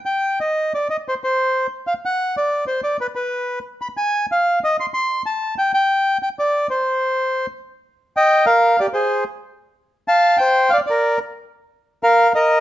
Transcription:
X:1
M:3/4
L:1/8
Q:1/4=186
K:Cm
V:1 name="Bandoneon"
g2 e2 d e | c c3 z f | ^f2 d2 c d | =B B3 z =b |
a2 f2 e c' | c'2 =a2 g g- | g2 g d2 c- | c4 z2 |
[K:Eb] z2 [eg]2 [Bf]2 | [Gd] [Ac]2 z3 | z2 [f=a]2 [cg]2 | [df] [Bd]2 z3 |
z2 [Bf]2 [Be]2 |]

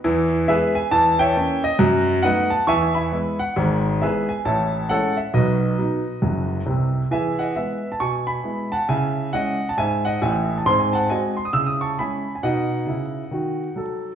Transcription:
X:1
M:4/4
L:1/16
Q:"Swing" 1/4=136
K:E
V:1 name="Grand piano"
z4 [GBe]2 g2 a2 [ce=g]4 d2 | z4 [Bdf]2 a2 [egc']2 [egb]4 f2 | z4 [GBe]2 g2 [cea]4 [Acf]2 e2 | [FBd]12- [FBd]2 z2 |
[eg]2 [df]2 [Be]3 a [gc']2 [gb]4 [fa]2 | [eg]4 [df]3 a [eg]2 [df]2 [eg]3 a | ^b g [fa]2 [dg]2 b d' e' d' [ac']2 [g=b]3 g | [df]12 z4 |]
V:2 name="Grand piano" clef=bass
[E,,E,]4 [G,B,E]4 [E,,E,]4 [_B,CE]4 | [F,,F,]4 [A,B,D]4 [E,,E,]4 [G,B,E]4 | [G,,,G,,]4 [G,B,E]4 [A,,,A,,]4 [G,CE]4 | [B,,,B,,]4 [F,B,D]4 [F,,,F,,]4 [=C,,=C,]4 |
[E,G]4 [G,B,E]4 B,,4 [G,B,E]4 | [C,E]4 [G,CE]4 G,,4 [A,,,A,,]4 | [G,,^B,]4 [G,B,F]4 [C,E]4 [G,CE]4 | [B,,D]4 [C,E]4 [D,F]4 [F,A]4 |]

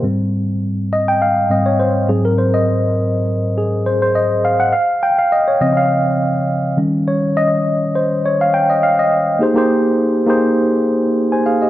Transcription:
X:1
M:4/4
L:1/16
Q:"Swing 16ths" 1/4=102
K:Ab
V:1 name="Tine electric piano"
z6 e g f2 e d c2 A B | c e4 z3 A2 c c e2 f _g | f2 g f e d e f4 z4 z | d2 e4 c2 d f g e f e3 |
[B,EGAc] [B,EGAc]4 z [B,EGAc]6- [B,EGAc] [ca] [Af] [Ge] |]
V:2 name="Tine electric piano" clef=bass
[A,,G,C]8- [A,,G,C]2 [A,,G,C]2 z2 [A,,_G,C]2- | [A,,_G,C]12- [A,,G,C]2 z2 | z6 [D,F,C]6 z2 [E,G,D]2 | z16 |
z16 |]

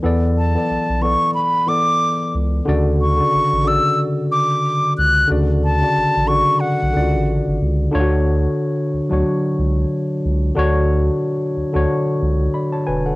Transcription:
X:1
M:4/4
L:1/16
Q:"Swing 16ths" 1/4=91
K:Dlyd
V:1 name="Flute"
z2 a4 c'2 b2 d'4 z2 | z2 c'4 e'2 z2 d'4 f'2 | z2 a4 c'2 f6 z2 | z16 |
z16 |]
V:2 name="Tine electric piano"
[E,B,Ad]2 z [E,B,Ad]2 z [E,B,Ad]3 z [E,B,Ad]4- [E,B,Ad] z | [C,D,Fd]2 z [C,D,Fd]2 z [C,D,Fd]6 z4 | [C,D,Fd]2 z [C,D,Fd]2 z [C,D,Fd]3 z [C,D,^EFd]4- [C,D,EFd] z | [D,D^EFc]6 z [F,DFc]6 z3 |
[D,DFc]6 z [D,DFc]2 z3 [db] [ca] [Bg] [Af] |]
V:3 name="Analog synth bass" clef=bass
E,,4 B,,, B,,,2 z6 z C,,2 | D,,4 A,,, A,,,2 z6 z C,,2 | D,,4 A,,, A,,,2 z2 B,,, C,, A,,,2 G,,, C,,2 | D,,4 z2 D,, D,, z2 C,,2 z2 C,,2 |
D,,4 z2 D,, D,, z2 C,,2 z2 E,,,2 |]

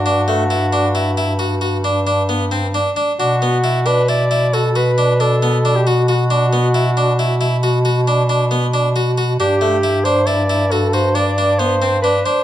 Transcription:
X:1
M:7/4
L:1/16
Q:1/4=135
K:Bphr
V:1 name="Soprano saxophone"
F12- F2 z12 z2 | F6 B2 d4 A2 B4 A4- A G F2 F2- | F12- F2 z12 z2 | G6 c2 d4 A2 c2 d4 c4 B2 c2 |]
V:2 name="Harpsichord"
D2 A,2 E2 D2 E2 E2 F2 F2 D2 D2 B,2 C2 D2 D2 | D2 B,2 E2 D2 E2 E2 F2 F2 D2 D2 B,2 D2 F2 F2 | D2 B,2 E2 D2 E2 E2 F2 F2 D2 D2 B,2 D2 F2 F2 | D2 A,2 E2 D2 E2 E2 F2 F2 D2 D2 B,2 C2 D2 D2 |]
V:3 name="Bass clarinet" clef=bass
G,,24- G,,4 | B,,24- B,,4- | B,,24- B,,4 | G,,24- G,,4 |]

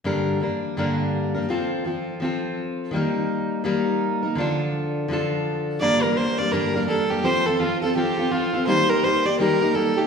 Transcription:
X:1
M:4/4
L:1/8
Q:"Swing" 1/4=167
K:Gm
V:1 name="Fiddle"
z8 | z8 | z8 | z8 |
d B c d B2 A G | c A F A G2 F2 | c B c d B2 A G |]
V:2 name="Steel-string acoustic guitar"
[G,,D,G,B,DB]2 [G,B,DB]2 [G,,D,G,B,DB]3 [G,B,DB] | [F,CFA]2 [F,CFA]2 [F,CFA]4 | [E,G,B,EB]4 [E,G,B,EB]3 [B,EB] | [D,F,DFA]4 [D,F,DFA]4 |
[G,,D,G,B,DB] [G,B,DB] [G,B,DB] [G,B,DB] [G,,D,G,B,DB] [G,B,DB] [G,B,DB] [G,B,DB] | [F,CFA] [CFA] [F,CFA] [CFA] [F,CFA] [CFA] [F,CFA] [CFA] | [E,G,B,EG] [B,EG] [G,B,EG] [B,EG] [E,G,B,EG] [B,EG] [G,B,EG] [B,EG] |]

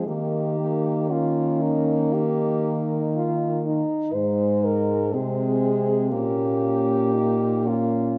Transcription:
X:1
M:4/4
L:1/16
Q:1/4=59
K:Ebmix
V:1 name="French horn"
G4 F2 E2 G3 z F2 E2 | c2 B2 A4 G6 F2 |]
V:2 name="French horn"
E4 D4 E6- E z | E4 C4 D4 E2 D2 |]
V:3 name="French horn"
B,2 B,2 B,8- B,3 z | A,4 A,4 B,8 |]
V:4 name="French horn" clef=bass
E,12- E,3 z | A,,4 C,4 B,,8 |]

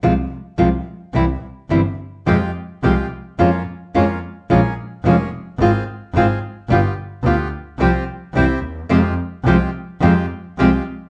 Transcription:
X:1
M:4/4
L:1/8
Q:1/4=108
K:Fm
V:1 name="Bandoneon"
z8 | [A,FG] z [A,FG] z [B,DF] z [B,DF] z | [B,DA] z [B,DA] z [CFA] z [CFA] z | [=B,FG] z [B,FG] z [CFG] z [C=EG] z |
[A,FG] z [A,FG] z [A,FG] z [A,FG] z |]
V:2 name="Nylon-string guitar" clef=bass
[C,F,A,CF] z [C,F,A,CF] z [C,=E,G,C=E] z [C,E,G,CE] z | [C,F,A,CG] z [C,F,A,CG] z [F,A,DF] z [F,A,DF] z | [F,A,DF] z [F,A,DF] z [A,CF] z [A,CF] z | [G,=B,F] z [G,B,F] z [C,F,G,CG] z [C,=E,G,C=E] z |
[C,F,A,CG] z [C,F,A,CG] z [C,F,A,CG] z [C,F,A,CG] z |]
V:3 name="Double bass" clef=bass
C,, z C,, z C,, z G,,, z | F,, z C,, z F,, z F,, z | B,,, z F,,, z A,,, z A,,, z | G,,, z =D,, z C,, z C,, E,, |
F,, z C,, z F,, z C,, z |]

